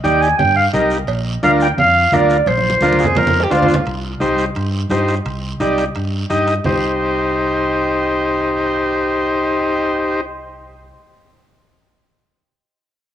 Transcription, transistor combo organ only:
0.04 0.28 D#4 medium
0.04 0.28 G4 medium
0.04 0.29 D5 medium
0.73 0.98 D#4 medium
0.73 0.98 G4 medium
0.73 0.98 A#4 medium
1.43 1.67 D4 medium
1.43 1.67 F4 medium
1.43 1.68 A#4 medium
2.13 2.37 D4 medium
2.13 2.37 F4 medium
2.13 2.37 A#4 medium
2.82 3.06 D4 medium
2.82 3.06 F4 medium
2.82 3.07 A#4 medium
3.51 3.75 D4 medium
3.51 3.76 F4 medium
3.51 3.76 C5 medium
4.20 4.45 D#4 medium
4.20 4.45 G4 medium
4.20 4.45 C5 medium
4.90 5.15 D#4 medium
4.90 5.15 G4 medium
4.90 5.15 C5 medium
5.60 5.84 D#4 medium
5.60 5.85 G4 medium
5.60 5.85 D5 medium
6.30 6.54 D#4 medium
6.30 6.54 G4 medium
6.30 6.55 D#5 medium
6.66 10.21 D#4 medium
6.66 10.21 G4 medium
6.66 10.21 C5 medium

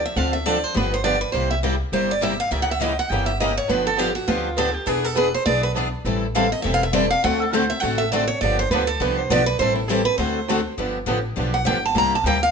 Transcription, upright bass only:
0.16 0.63 D2 medium
0.76 1.23 G1 medium
1.34 1.81 C2 medium
1.92 2.40 G1 medium
2.51 2.99 C#2 medium
3.10 3.58 G1 medium
3.69 4.17 G1 medium
4.28 4.76 D2 medium
4.87 5.34 E1 medium
5.46 5.94 B1 medium
6.05 6.52 A1 medium
6.65 7.12 E1 medium
7.24 7.71 D2 medium
7.83 8.30 A1 medium
8.42 8.65 G1 medium
8.70 8.96 D2 medium
9.00 9.26 C2 medium
9.30 9.55 B1 medium
9.59 10.07 A1 medium
10.18 10.66 D2 medium
10.78 11.06 G1 medium
11.07 11.36 A1 medium
11.37 11.66 B1 medium
11.67 11.94 G1 medium
11.95 12.23 C2 medium
12.24 12.51 D2 medium

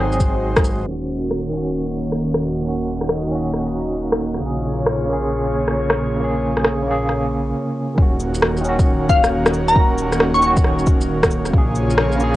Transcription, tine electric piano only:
0.00 0.89 F#3 medium
0.00 0.89 C4 medium
0.00 0.89 G#4 loud
0.83 1.48 D#3 medium
0.87 1.52 C#4 medium
0.91 1.54 F#4 medium
1.49 2.59 D#3 medium
1.53 2.63 C#4 medium
1.53 2.65 F#4 medium
2.60 3.26 D#3 medium
2.65 3.29 C#4 medium
2.65 3.31 F#4 medium
3.27 4.38 D#3 medium
3.31 4.40 C#4 medium
3.35 4.43 F#4 medium
4.38 5.04 C#3 medium
4.38 5.07 A#3 medium
4.46 5.09 G#4 medium
5.05 6.15 C#3 medium
5.05 6.18 A#3 medium
5.13 6.20 G#4 medium
6.16 6.81 C#3 medium
6.16 6.85 A#3 medium
6.24 6.87 G#4 medium
6.83 7.51 C#3 medium
6.87 7.53 A#3 medium
6.87 7.55 G#4 medium
7.94 8.59 D#3 medium
7.94 8.63 C#4 medium
8.02 8.65 F#4 medium
8.61 9.71 D#3 medium
8.65 9.74 C#4 medium
8.69 9.76 F#4 loud
9.72 10.37 D#3 medium
9.76 10.41 C#4 medium
9.76 10.43 F#4 medium
10.39 11.50 D#3 medium
10.39 11.52 C#4 medium
10.47 11.54 F#4 loud
11.50 12.15 C#3 medium
11.54 12.19 A#3 medium
11.54 12.21 G#4 medium
12.16 12.36 C#3 loud
12.16 12.36 A#3 medium
12.24 12.36 G#4 loud

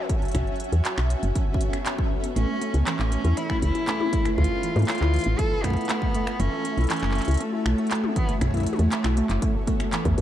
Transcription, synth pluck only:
2.36 2.44 A3 medium
2.49 2.53 A3 medium
2.61 2.69 A3 loud
2.74 2.79 A3 medium
2.87 2.91 E3 medium
2.99 3.07 A3 loud
3.12 3.20 A3 medium
3.25 3.32 E4 loud
3.37 3.42 E3 medium
3.50 3.57 A3 medium
3.62 3.67 A3 medium
3.75 3.80 E4 medium
3.88 3.95 A3 loud
4.00 4.12 E4 medium
4.13 4.20 A3 medium
4.25 4.30 A3 medium
4.38 4.46 A3 loud
4.51 4.55 A3 medium
4.63 4.68 E3 medium
4.76 4.83 A3 loud
4.88 4.96 A3 medium
5.01 5.09 E4 loud
5.14 5.18 E3 medium
5.26 5.34 A3 medium
5.39 5.43 A3 medium
5.51 5.56 E4 medium
5.64 5.72 A3 loud
5.77 5.88 E4 medium
5.89 5.97 A3 medium
6.02 6.06 A3 medium
6.14 6.22 A3 loud
6.40 6.44 E3 medium
6.52 6.60 A3 loud
6.65 6.72 A3 medium
6.77 6.85 E4 loud
6.90 6.95 E3 medium
7.03 7.10 A3 medium
7.15 7.20 A3 medium
7.28 7.32 E4 medium
7.40 7.48 A3 loud
7.53 7.65 E4 medium
7.66 7.73 A3 medium
7.78 7.83 A3 medium
7.91 7.99 A3 loud
8.04 8.08 A3 medium
8.16 8.21 E3 medium
8.29 8.36 A3 loud
8.41 8.49 A3 medium
8.54 8.62 E4 loud
8.67 8.71 E3 medium
8.79 8.87 A3 medium
8.92 8.96 A3 medium
9.04 9.09 E4 medium
9.17 9.25 A3 loud
9.30 9.41 E4 medium
9.42 9.50 A3 medium
9.55 9.59 A3 medium
9.67 9.75 A3 loud
9.80 9.85 A3 medium
9.93 9.97 E3 medium
10.05 10.13 A3 loud
10.18 10.21 A3 medium

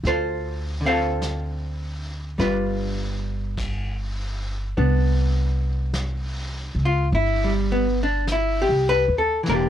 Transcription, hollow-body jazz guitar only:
0.07 0.85 F4 soft
0.07 0.86 A4 soft
0.07 0.86 C5 medium
0.81 2.38 D3 soft
0.85 2.39 C4 soft
0.85 2.38 F4 soft
0.85 0.91 A4 medium
0.85 2.37 C5 medium
0.85 3.17 F5 medium
0.92 2.39 A4 medium
2.38 4.76 G3 soft
2.38 4.76 D4 soft
2.38 4.76 F4 soft
2.38 4.76 B4 medium
4.77 7.71 B3 soft
4.77 8.02 D4 soft
6.85 7.07 F4 medium
7.15 7.52 E4 medium
7.44 7.86 G3 soft
7.72 7.99 B3 medium
8.03 8.24 D4 medium
8.32 8.69 E4 medium
8.62 9.04 G4 medium
8.89 9.17 B4 medium
9.18 9.41 A4 medium
9.44 9.69 E3 soft
9.48 9.69 A#3 soft
9.48 9.69 D4 soft
9.48 9.54 A#4 medium
9.55 9.69 G4 soft

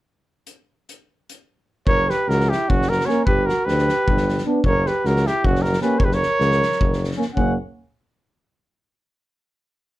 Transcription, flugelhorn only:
1.88 2.11 A#4 medium
2.09 2.31 G4 medium
2.30 2.52 F#4 medium
2.51 2.70 E4 medium
2.68 2.92 C#4 medium
2.90 3.11 F#4 medium
3.09 3.27 A#4 medium
3.27 3.49 G4 medium
3.47 3.68 F#4 medium
3.66 4.45 G4 medium
4.65 4.88 A#4 medium
4.87 5.06 G4 medium
5.05 5.28 F#4 medium
5.26 5.46 E4 medium
5.44 5.64 C#4 medium
5.62 5.80 F#4 medium
5.80 6.00 G4 medium
5.98 6.06 A#4 medium
6.05 6.15 G4 medium
6.13 7.16 A#4 medium
7.37 7.56 C#4 medium

